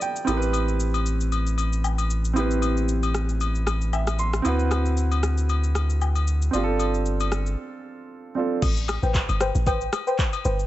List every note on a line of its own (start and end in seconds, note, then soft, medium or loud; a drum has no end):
0.00 0.22 G3 medium
0.00 0.23 C4 medium
0.00 0.24 D4 medium
0.00 0.25 F4 medium
0.00 0.25 A4 medium
0.00 0.30 D5 medium
0.00 0.26 G5 medium
0.00 shaker loud
0.16 shaker medium
0.25 4.41 A1 medium
0.25 2.31 C4 medium
0.25 2.32 E4 medium
0.25 high agogo medium
0.25 shaker medium
0.29 2.33 G4 medium
0.29 0.36 A#4 medium
0.37 2.37 B4 medium
0.42 shaker medium
0.53 high agogo medium
0.53 shaker medium
0.68 shaker soft
0.80 shaker medium
0.94 high agogo medium
0.94 shaker medium
1.06 shaker medium
1.20 shaker medium
1.32 high agogo medium
1.32 shaker medium
1.47 shaker soft
1.58 high agogo medium
1.58 shaker medium
1.73 shaker medium
1.84 low woodblock medium
1.84 shaker medium
1.98 high agogo medium
1.98 shaker medium
2.10 shaker loud
2.25 shaker medium
2.33 4.40 C4 medium
2.33 4.41 E4 medium
2.33 high agogo medium
2.33 shaker medium
2.38 4.42 G4 medium
2.38 4.43 B4 medium
2.51 shaker medium
2.62 high agogo medium
2.62 shaker medium
2.77 shaker soft
2.88 shaker medium
3.03 high agogo medium
3.03 shaker medium
3.15 cross-stick medium
3.15 shaker medium
3.29 shaker medium
3.41 high agogo medium
3.41 shaker medium
3.55 shaker soft
3.67 cross-stick medium
3.67 high agogo medium
3.67 shaker medium
3.81 shaker medium
3.93 4.17 E5 medium
3.93 low woodblock medium
3.93 shaker medium
4.07 cross-stick medium
4.07 high agogo medium
4.07 shaker medium
4.19 4.43 C6 medium
4.19 shaker loud
4.33 cross-stick medium
4.33 shaker medium
4.42 6.50 D2 medium
4.42 6.48 C4 medium
4.42 6.49 E4 medium
4.42 high agogo medium
4.42 shaker medium
4.46 6.50 F#4 medium
4.46 6.51 B4 medium
4.59 shaker medium
4.71 cross-stick medium
4.71 high agogo medium
4.71 shaker medium
4.86 shaker soft
4.97 shaker medium
5.12 high agogo medium
5.12 shaker medium
5.23 cross-stick medium
5.23 shaker medium
5.38 shaker medium
5.49 high agogo medium
5.49 shaker medium
5.64 shaker medium
5.75 cross-stick medium
5.75 high agogo medium
5.75 shaker medium
5.90 shaker medium
6.01 low woodblock medium
6.01 shaker medium
6.15 high agogo medium
6.15 shaker medium
6.27 shaker loud
6.42 shaker medium
6.51 7.56 G1 medium
6.51 8.31 C4 medium
6.51 8.32 D4 medium
6.51 high agogo medium
6.51 shaker medium
6.55 8.33 F4 medium
6.55 6.62 G4 medium
6.63 8.37 A4 medium
6.79 high agogo medium
6.79 shaker medium
6.94 shaker soft
7.06 shaker medium
7.20 high agogo medium
7.20 shaker medium
7.32 cross-stick medium
7.32 shaker medium
7.46 shaker medium
8.35 8.62 C4 medium
8.35 8.62 D4 medium
8.35 8.63 F4 soft
8.35 8.63 A4 medium
8.62 8.98 A1 loud
8.62 kick loud
8.62 crash loud
8.62 high agogo medium
8.62 shaker medium
8.77 shaker medium
8.88 cross-stick loud
8.88 high agogo medium
8.88 shaker loud
9.03 9.26 A1 medium
9.03 9.12 B4 medium
9.03 9.12 C5 medium
9.03 9.12 G5 medium
9.03 shaker soft
9.14 kick medium
9.14 clap medium
9.14 shaker medium
9.29 9.52 G1 medium
9.29 high agogo medium
9.29 shaker medium
9.40 9.52 B4 medium
9.40 9.52 C5 medium
9.40 9.52 G5 medium
9.40 cross-stick loud
9.40 shaker medium
9.55 9.89 A1 medium
9.55 shaker medium
9.66 9.78 B4 medium
9.66 9.78 C5 medium
9.66 9.78 G5 loud
9.66 kick loud
9.66 high agogo medium
9.66 shaker medium
9.81 shaker medium
9.93 cross-stick loud
9.93 high agogo medium
9.93 shaker loud
10.07 10.16 B4 medium
10.07 10.16 C5 medium
10.07 10.16 G5 medium
10.07 shaker medium
10.19 kick medium
10.19 clap loud
10.19 shaker medium
10.33 high agogo medium
10.33 shaker medium
10.45 10.67 G1 loud
10.45 10.56 B4 medium
10.45 10.56 C5 medium
10.45 10.56 G5 medium
10.45 shaker loud
10.59 shaker medium